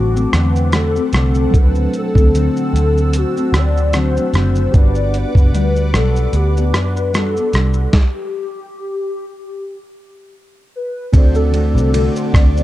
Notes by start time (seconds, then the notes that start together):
Already playing: A1 D3 F#3 A3 C4 D4 F#4 A4 F#5 A5 D6
0.14 A3 C4 F#4, shaker
0.33 E2 D3 A3 C4 F#4 B4, cross-stick, closed hi-hat, shaker
0.56 shaker
0.72 D3 A3 C4 F#4 A4, cross-stick, closed hi-hat, shaker
0.95 A3 C4 F#4, shaker
1.13 C2 D3 A3 C4 F#4 A4, cross-stick, closed hi-hat, shaker
1.35 shaker
1.51 D2 D3 F#3 A3 C4 D4 E6, kick, closed hi-hat, shaker
1.55 F#4 A4 B4
1.75 A3 C4 F#4, shaker
1.94 closed hi-hat, shaker
1.98 A4
2.15 D2 A3 C4 F#4, kick, shaker
2.34 D3 A3 C4 F#4, closed hi-hat, shaker
2.57 shaker
2.73 D2 D3 A3 C4 F#4, closed hi-hat, shaker
2.98 shaker
3.13 F#4, closed hi-hat, shaker
3.36 A3 C4 F#4, shaker
3.53 D2 D3 A3 C4, cross-stick, closed hi-hat, shaker
3.57 F#4 D5
3.77 shaker
3.93 D3 F#3 A3 C4 D4 F#4 C5, cross-stick, closed hi-hat, shaker
4.16 A3 C4 F#4, shaker
4.34 F#1 D3 A3 C4 F#4 C5, cross-stick, closed hi-hat, shaker
4.55 shaker
4.72 G1 G3 B3 D4 F#4 G4 B4 D5 F#5 D6, kick, closed hi-hat, shaker
4.77 B4 D5
4.95 shaker
5.14 B4, closed hi-hat, shaker
5.35 F#1 B3 D4 F#4, kick, shaker
5.53 D2 G3 B3 D4 F#4, closed hi-hat, shaker
5.76 shaker
5.93 B1 G3 B3 D4 F#4 A4, cross-stick, closed hi-hat, shaker
6.16 shaker
6.33 D2 G4, closed hi-hat, shaker
6.56 B3 D4 F#4, shaker
6.73 F#2 B3 D4 F#4 B4, cross-stick, closed hi-hat, shaker
6.97 shaker
7.13 G3 B3 D4 F#4 A4, cross-stick, closed hi-hat, shaker
7.36 B3 D4 F#4, shaker
7.53 C2 G3 B3 D4 F#4, cross-stick, closed hi-hat, shaker
7.74 shaker
7.93 G4, kick, snare
10.75 B4
11.12 D2 D3 A3 C4 D4 F#4 A4 C5 F#5 A5 D6, kick, ride, shaker
11.18 D5
11.35 A4, shaker
11.52 D3 A3 C4 F#4, ride, shaker
11.75 C2, shaker
11.93 D3 A3 C4 F#4 A4, ride, shaker
12.16 C5, shaker
12.34 D2 D3 A3 C4 F#4 D5, kick, cross-stick, ride, shaker
12.56 A3 C4 F#4, shaker